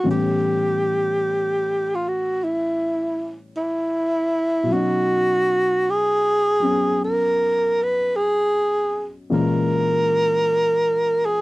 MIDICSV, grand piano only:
0, 0, Header, 1, 2, 480
1, 0, Start_track
1, 0, Tempo, 1153846
1, 20, Time_signature, 4, 2, 24, 8
1, 4748, End_track
2, 0, Start_track
2, 0, Title_t, "Grand piano"
2, 0, Program_c, 0, 0
2, 0, Control_c, 0, 64, 127
2, 15, Note_on_c, 0, 45, 42
2, 17, Note_on_c, 0, 52, 37
2, 19, Note_on_c, 0, 55, 38
2, 22, Note_on_c, 0, 59, 35
2, 25, Control_c, 0, 64, 0
2, 26, Note_on_c, 0, 61, 44
2, 108, Control_c, 0, 64, 127
2, 1927, Note_on_c, 0, 47, 42
2, 1939, Note_off_c, 0, 45, 0
2, 1939, Note_on_c, 0, 54, 39
2, 1940, Note_off_c, 0, 52, 0
2, 1941, Note_off_c, 0, 55, 0
2, 1942, Note_off_c, 0, 59, 0
2, 1944, Note_off_c, 0, 61, 0
2, 1948, Control_c, 0, 64, 0
2, 1962, Note_on_c, 0, 61, 35
2, 1973, Note_on_c, 0, 63, 46
2, 2024, Control_c, 0, 64, 127
2, 2738, Note_off_c, 0, 54, 0
2, 2744, Note_on_c, 0, 54, 30
2, 2751, Note_off_c, 0, 61, 0
2, 2752, Note_on_c, 0, 59, 31
2, 2757, Note_on_c, 0, 61, 37
2, 3853, Note_off_c, 0, 47, 0
2, 3861, Note_off_c, 0, 54, 0
2, 3864, Control_c, 0, 64, 0
2, 3865, Note_off_c, 0, 59, 0
2, 3865, Note_off_c, 0, 61, 0
2, 3868, Note_on_c, 0, 46, 52
2, 3870, Note_on_c, 0, 56, 47
2, 3871, Note_on_c, 0, 52, 44
2, 3871, Note_on_c, 0, 61, 42
2, 3876, Note_off_c, 0, 63, 0
2, 3876, Note_on_c, 0, 70, 56
2, 3939, Control_c, 0, 64, 127
2, 4748, Note_off_c, 0, 46, 0
2, 4748, Note_off_c, 0, 52, 0
2, 4748, Note_off_c, 0, 56, 0
2, 4748, Note_off_c, 0, 61, 0
2, 4748, Note_off_c, 0, 70, 0
2, 4748, End_track
0, 0, End_of_file